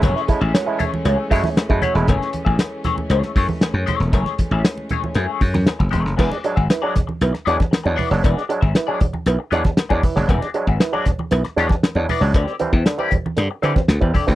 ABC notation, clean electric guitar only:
X:1
M:4/4
L:1/16
Q:1/4=117
K:Emix
V:1 name="Clean electric guitar"
[A,EGc]2 z [A,EGe] z2 [A,EGc] z [A,EGc]2 [A,EGc] z3 [A,EGc]2 | [A,EGc]2 z [A,EGe] z2 [A,EGc] z [A,EGc]2 [A,EGc] z3 [A,EGc]2 | [A,EGc]2 z [A,EGe] z2 [A,EGc] z [A,EGc]2 z4 [A,EGc]2 | [B,FGd]2 z [B,FGe] z [B,FGd]2 z3 [B,FGd]2 z2 [B,FGd]2 |
[B,FGd]2 z [B,FGe] z [B,FGd]2 z3 [B,FGd]2 z [B,FGd]2 z | [B,FGd]2 z [B,FGe] z [B,FGd]2 z3 [B,FGd]2 z2 [B,FGd]2 | [=CE=Gd]2 z [CEGe] z [CEGd]2 z3 [CEGd]2 z2 [CEGd]2 |]